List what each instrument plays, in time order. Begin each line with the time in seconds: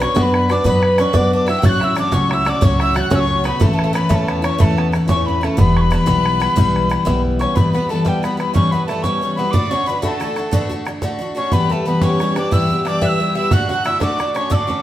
0.00 twelve-string acoustic guitar B3 D4 F#4 B4, bouzouki C#4, fiddle C#5, tin whistle C#6, bodhran
0.15 upright bass F#2, bouzouki B3, twelve-string acoustic guitar B3 D4 F#4 B4, fiddle B4, tin whistle C#6, bodhran
0.22 tin whistle B5
0.34 bodhran
0.49 bouzouki D4, twelve-string acoustic guitar D4 F#4 B4, fiddle D5, tin whistle D6, bodhran
0.64 upright bass F#2, twelve-string acoustic guitar B3 D4 F#4 B4, bouzouki B3, fiddle B4, tin whistle B5, bodhran
0.83 bodhran
0.98 twelve-string acoustic guitar B3 D4 F#4 B4, bouzouki C#4, tin whistle C#6, bodhran
1.13 upright bass F#2, twelve-string acoustic guitar B3 D4 F#4 B4, bouzouki D4, fiddle D5, tin whistle D6, bodhran
1.32 bouzouki D4, fiddle D5, tin whistle D6, bodhran
1.46 bouzouki E4, twelve-string acoustic guitar F#4 B4, fiddle E5, tin whistle E6, bodhran
1.50 twelve-string acoustic guitar D4
1.59 twelve-string acoustic guitar A2, fiddle F#5 G5
1.63 upright bass A1, twelve-string acoustic guitar F#3 A3 C#4 F#4, bouzouki F#4, tin whistle A6, bodhran
1.69 tin whistle F#6
1.80 bouzouki E4, fiddle E5, bodhran
1.84 tin whistle E6
1.95 twelve-string acoustic guitar F#3 A3 C#4 F#4, bouzouki D4, fiddle D5, bodhran
1.99 tin whistle D6
2.11 upright bass C#2, twelve-string acoustic guitar A2 F#3 A3 C#4 F#4, bouzouki C#4, fiddle C#5, tin whistle C#6, bodhran
2.29 bouzouki E4, fiddle E5, bodhran
2.34 tin whistle E6
2.45 twelve-string acoustic guitar A3 C#4 F#4, bouzouki D4, fiddle D5, bodhran
2.49 tin whistle D6
2.61 upright bass C#2, twelve-string acoustic guitar A2 F#3 A3 C#4 F#4, bouzouki C#4, fiddle C#5, tin whistle C#6, bodhran
2.79 bouzouki E4, fiddle E5, tin whistle E6, bodhran
2.94 twelve-string acoustic guitar F#3 A3 C#4 F#4, bouzouki F#4, fiddle F#5, tin whistle A6, bodhran
3.01 tin whistle F#6
3.10 upright bass C#2, twelve-string acoustic guitar A2 F#3 A3 C#4 F#4, bouzouki C#4, fiddle C#5, bodhran
3.15 tin whistle E6
3.20 tin whistle C#6
3.30 bodhran
3.44 twelve-string acoustic guitar A3 C#4 F#4, bouzouki B3, fiddle B4, bodhran
3.48 tin whistle B5
3.60 upright bass A1, twelve-string acoustic guitar A2 E3 A3 C#4 E4, bouzouki A3, fiddle A4, tin whistle B5, bodhran
3.67 tin whistle A5
3.73 bouzouki A3
3.79 bodhran
3.84 bouzouki A3
3.93 twelve-string acoustic guitar E3 A3 C#4 E4, bouzouki B3, fiddle B4, tin whistle B5, bodhran
4.09 upright bass E2, twelve-string acoustic guitar A2 E3 A3 C#4 E4, bouzouki A3, fiddle A4, tin whistle B5, bodhran
4.15 tin whistle A5
4.28 bouzouki B3, bodhran
4.42 twelve-string acoustic guitar A3 C#4 E4, bouzouki C#4, fiddle C#5, tin whistle C#6, bodhran
4.58 upright bass E2, twelve-string acoustic guitar A2 E3 A3 C#4 E4, bouzouki A3, fiddle A4, tin whistle B5, bodhran
4.65 tin whistle A5
4.78 bouzouki B3, bodhran
4.92 twelve-string acoustic guitar E3 A3 C#4 E4, bodhran
5.08 upright bass E2, twelve-string acoustic guitar A2 E3 A3 C#4 E4, bouzouki C#4, fiddle C#5, tin whistle C#6, bodhran
5.26 bouzouki B3, fiddle B4, tin whistle B5, bodhran
5.41 twelve-string acoustic guitar A3 C#4 E4, bouzouki A3, fiddle A4, tin whistle A5, bodhran
5.57 upright bass E1, twelve-string acoustic guitar E3 G3 B3 E4, bouzouki B3, fiddle B4, tin whistle B5, bodhran
5.76 tin whistle C#6, bodhran
5.81 tin whistle B5
5.91 twelve-string acoustic guitar E3 G3 B3 E4, tin whistle A5, bodhran
5.98 tin whistle B5
6.06 upright bass B1, twelve-string acoustic guitar E3 G3 B3 E4, bodhran
6.26 bodhran
6.40 twelve-string acoustic guitar G3 B3 E4, bodhran
6.56 upright bass B1, twelve-string acoustic guitar E3 G3 B3 E4, bodhran
6.76 bodhran
6.89 twelve-string acoustic guitar E3 G3 B3 E4, bodhran
7.05 upright bass B1, twelve-string acoustic guitar E3 G3 B3 E4, bodhran
7.26 bodhran
7.39 twelve-string acoustic guitar G3 B3 E4, bouzouki C#4, fiddle C#5, tin whistle C#6, bodhran
7.55 twelve-string acoustic guitar E3 G3 B3 E4, bouzouki B3, fiddle B4, tin whistle B5, bodhran
7.73 bouzouki B3, twelve-string acoustic guitar B3 E4, fiddle B4, tin whistle B5, bodhran
7.77 twelve-string acoustic guitar G3
7.89 twelve-string acoustic guitar E3 G3 B3 E4, bouzouki A3, fiddle A4, tin whistle A5
8.05 twelve-string acoustic guitar E3 G3 B3 E4, bouzouki G3, fiddle G4, tin whistle G5 A5, bodhran
8.23 twelve-string acoustic guitar E3 G3 B3 E4, bouzouki B3, fiddle B4, tin whistle B5, bodhran
8.37 twelve-string acoustic guitar G3 B3 E4, bouzouki B3, fiddle B4, tin whistle B5, bodhran
8.54 twelve-string acoustic guitar E3 G3 B3 E4, bouzouki C#4, fiddle C#5, tin whistle C#6, bodhran
8.71 twelve-string acoustic guitar G3 B3 E4, bouzouki B3, fiddle B4, tin whistle B5, bodhran
8.86 twelve-string acoustic guitar E3 G3 B3, bouzouki A3, fiddle A4, tin whistle A5, bodhran
8.91 twelve-string acoustic guitar E4
9.02 twelve-string acoustic guitar E3 G3 B3 E4, bouzouki C#4, fiddle C#5, tin whistle C#6, bodhran
9.21 twelve-string acoustic guitar E3 G3 B3 E4
9.36 bouzouki B3, twelve-string acoustic guitar B3 E4, fiddle B4, tin whistle B5
9.40 twelve-string acoustic guitar G3
9.51 twelve-string acoustic guitar D2 A2 D3 A3 D4 F#4, bouzouki D4, fiddle D5, tin whistle D6, bodhran
9.70 twelve-string acoustic guitar A3 D4 F#4, bouzouki C#4, fiddle C#5, tin whistle C#6, bodhran
9.74 twelve-string acoustic guitar D3
9.86 twelve-string acoustic guitar D3 A3 D4 F#4, bouzouki B3, fiddle B4, tin whistle B5
10.02 twelve-string acoustic guitar D2 A2 D3 A3 D4 F#4, bouzouki A3, fiddle A4, tin whistle B5, bodhran
10.08 tin whistle A5
10.20 twelve-string acoustic guitar D3 A3 D4 F#4, bodhran
10.36 twelve-string acoustic guitar D3 A3 D4 F#4, bodhran
10.51 twelve-string acoustic guitar D2 A2 D3 A3 D4 F#4, bouzouki B3, bodhran
10.69 twelve-string acoustic guitar D3 A3 D4 F#4, bodhran
10.85 twelve-string acoustic guitar D3 A3 D4 F#4, bodhran
11.02 twelve-string acoustic guitar D2 A2 D3 A3 D4 F#4, bodhran
11.19 twelve-string acoustic guitar D3 A3 D4 F#4
11.35 twelve-string acoustic guitar D3 A3 D4 F#4, bouzouki C#4, fiddle C#5, tin whistle C#6
11.52 twelve-string acoustic guitar E3 G3 B3 G4, bouzouki B3, fiddle B4, tin whistle B5, bodhran
11.69 twelve-string acoustic guitar G3 B3 G4, bouzouki A3, fiddle A4, tin whistle A5, bodhran
11.85 twelve-string acoustic guitar E3 G3 B3 G4, bouzouki B3, fiddle B4, tin whistle B5
12.01 twelve-string acoustic guitar E3 G3 B3 G4, bouzouki C#4, fiddle C#5, tin whistle C#6, bodhran
12.20 twelve-string acoustic guitar E3 G3 B3 G4, bodhran
12.36 twelve-string acoustic guitar G3 B3 G4, bouzouki D4, fiddle D5, tin whistle D6, bodhran
12.51 twelve-string acoustic guitar E3 G3 B3 G4, bouzouki E4, fiddle E5, tin whistle E6, bodhran
12.70 twelve-string acoustic guitar G3 B3 G4, bodhran
12.85 twelve-string acoustic guitar E3 G3 B3, bouzouki D4, fiddle D5, tin whistle D6, bodhran
12.89 twelve-string acoustic guitar G4
13.01 twelve-string acoustic guitar E3 G3 B3 G4, bouzouki E4, fiddle E5, tin whistle F#6, bodhran
13.09 tin whistle E6
13.19 twelve-string acoustic guitar E3 G3 B3 G4
13.35 twelve-string acoustic guitar G3 B3 G4, bouzouki E4, fiddle E5, tin whistle E6
13.51 twelve-string acoustic guitar D2 A2 D3 A3 D4 F#4, bouzouki F#4, fiddle F#5, tin whistle F#6, bodhran
13.69 twelve-string acoustic guitar D3 A3 D4 F#4, bouzouki F#4, fiddle F#5, tin whistle F#6, bodhran
13.84 twelve-string acoustic guitar D3 A3 D4 F#4, bouzouki E4, fiddle E5, tin whistle E6, bodhran
14.00 twelve-string acoustic guitar D2 A2 D3 A3 D4 F#4, bouzouki D4, fiddle D5, tin whistle D6, bodhran
14.19 twelve-string acoustic guitar D3 A3 D4 F#4, bodhran
14.34 twelve-string acoustic guitar D3 A3 D4 F#4, bouzouki C#4, fiddle C#5, tin whistle C#6, bodhran
14.50 twelve-string acoustic guitar D2 A2 D3 A3 D4 F#4, bouzouki D4, fiddle D5, tin whistle E6, bodhran
14.54 tin whistle D6
14.67 twelve-string acoustic guitar D3 A3 D4 F#4, bouzouki C#4, bodhran